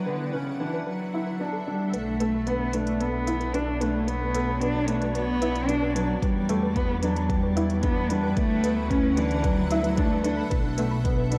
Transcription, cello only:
0.07 D3
0.34 C#3
0.61 E3
0.87 F#3
1.68 G3
1.94 A3
2.47 B3
2.74 A3
3.01 B3
3.55 D4
3.82 A3
4.08 B3
4.61 D4
4.88 A3
5.14 B3
5.67 D4
5.95 F#3
6.22 G3
6.75 B3
7.02 F#3
7.29 G3
7.83 B3
8.10 G3
8.37 A3
8.90 C#4
9.18 E3
9.45 F#3
9.52 G3
9.58 F#3
9.97 A3

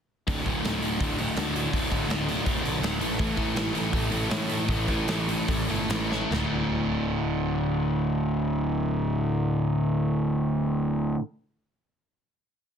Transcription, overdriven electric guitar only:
0.27 D2 A2 D3
0.45 D2 A2 D3
0.63 D2 A2 D3
0.81 D2 A2 D3
1.00 D2 A2 D3
1.19 D2 A2 D3
1.37 D2 A2 D3
1.55 D2 A2 D3
1.74 D2 A2 D3
1.91 D2 A2 D3
2.09 D2 A2 D3
2.28 D2 A2 D3
2.45 D2 A2 D3
2.63 D2 A2 D3
2.81 D2 A2 D3
3.00 A2 E3 A3
3.18 A2 E3 A3
3.36 A2 E3 A3
3.54 A2 E3 A3
3.73 A2 E3 A3
3.92 A2 E3 A3
4.10 A2 E3 A3
4.29 A2 E3 A3
4.50 A2 E3 A3
4.69 A2 E3 A3
4.88 A2 E3 A3
5.08 A2 E3 A3
5.28 A2 E3 A3
5.48 A2 E3 A3
5.68 A2 E3 A3
5.89 A2 E3 A3
6.11 A2 E3 A3
6.31 D2 A2 D3

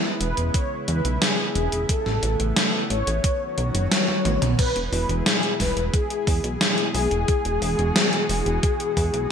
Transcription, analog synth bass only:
0.21 E1
0.38 E1
0.88 E2
1.05 B1
1.56 E1
1.72 E1
2.06 A1
2.23 A1
2.40 A1
2.90 A1
3.07 A1
3.58 B1
3.75 F#1
4.25 A1
4.42 B1
4.76 E1
4.92 E1
5.09 E1
5.60 E1
5.77 E1
6.27 E2
6.44 B1
6.95 B1
7.11 E1
7.45 E1
7.62 E1
7.79 E1
8.29 E1
8.46 E1
8.97 E2
9.14 B1

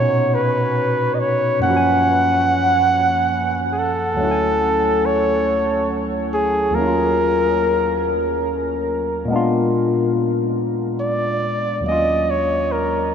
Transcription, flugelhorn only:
Already playing: C#5
0.34 B4
1.14 D#5
1.19 C#5
1.62 F#5
3.72 G#4
3.78 A4
5.06 C#5
6.34 G#4
6.75 A#4
11.00 D5
11.88 D#5
12.30 C#5
12.72 A#4

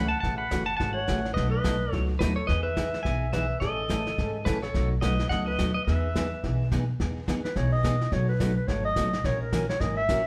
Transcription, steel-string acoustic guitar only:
0.24 C#3 E3 A3 C#4 F#4
0.51 C#3 E3 A3 C#4 F#4
0.80 C#3 E3 A3 C#4 F#4
1.08 C#3 E3 A3 C#4 F#4
1.37 B2 F#3 A3 D#4 F#4
1.64 B2 F#3 A3 D#4 F#4
1.92 B2 F#3 A3 D#4 F#4
2.21 B2 F#3 A3 D#4 F#4
2.49 E3 B3 D#4 G#4
2.76 E3 B3 D#4 G#4
3.05 E3 B3 D#4 G#4
3.33 E3 B3 D#4 G#4
3.61 C#3 E3 A3 C#4 A4
3.89 C#3 E3 A3 C#4 A4
4.18 C#3 E3 A3 C#4 A4
4.46 C#3 E3 A3 C#4 A4
4.74 B2 F#3 A3 D#4 F#4
5.03 B2 F#3 A3 D#4 F#4
5.32 B2 F#3 A3 D#4 F#4
5.59 B2 F#3 A3 D#4 F#4
5.88 E3 B3 D#4 G#4
6.16 E3 B3 D#4 G#4
6.44 E3 B3 D#4 G#4
6.72 E3 B3 D#4 G#4
7.00 E3 B3 D#4 G#4
7.28 E3 B3 D#4 G#4
7.56 E3 B3 D#4 G#4
7.83 E3 B3 D#4 G#4
8.12 B2 F#3 A3 D#4 F#4
8.40 B2 F#3 A3 D#4 F#4
8.68 B2 F#3 A3 D#4 F#4
8.96 B2 F#3 A3 D#4 F#4
9.25 E3 A#3 C#4 F#4 A#4
9.53 E3 A#3 C#4 F#4 A#4
9.81 E3 A#3 C#4 F#4 A#4
10.10 E3 A#3 C#4 F#4 A#4

